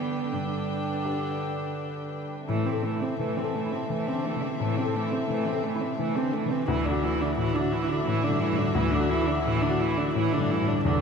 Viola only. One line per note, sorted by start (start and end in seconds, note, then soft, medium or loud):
0.00 0.35 B3 soft
0.33 2.28 D4 soft
2.50 2.67 A3 medium
2.66 2.86 C4 soft
2.85 3.04 A3 medium
3.02 3.19 C4 soft
3.20 3.38 A3 medium
3.37 3.56 C4 medium
3.55 3.73 A3 medium
3.72 3.89 C4 soft
3.89 4.09 A3 soft
4.08 4.27 C4 medium
4.26 4.44 A3 soft
4.43 4.60 C4 soft
4.61 4.80 A3 medium
4.78 4.97 C4 medium
4.96 5.14 A3 medium
5.12 5.29 C4 medium
5.29 5.48 A3 medium
5.46 5.65 C4 medium
5.63 5.82 A3 medium
5.81 5.98 C4 medium
5.99 6.18 A3 medium
6.16 6.35 C4 medium
6.33 6.52 A3 medium
6.51 6.68 C4 medium
6.69 6.87 E4 medium
6.86 7.06 D4 medium
7.04 7.22 E4 medium
7.21 7.38 D4 medium
7.38 7.57 E4 medium
7.55 7.74 D4 medium
7.73 7.91 E4 medium
7.89 8.05 D4 medium
8.06 8.25 E4 medium
8.24 8.43 D4 medium
8.42 8.59 E4 medium
8.58 8.74 D4 medium
8.75 8.93 E4 medium
8.92 9.10 D4 medium
9.09 9.27 E4 medium
9.26 9.43 D4 medium
9.44 9.63 E4 medium
9.62 9.81 D4 medium
9.79 9.99 E4 medium
9.97 10.14 D4 medium
10.14 10.34 E4 medium
10.32 10.51 D4 medium
10.50 10.69 E4 medium
10.67 10.83 D4 medium
10.84 11.01 D4 medium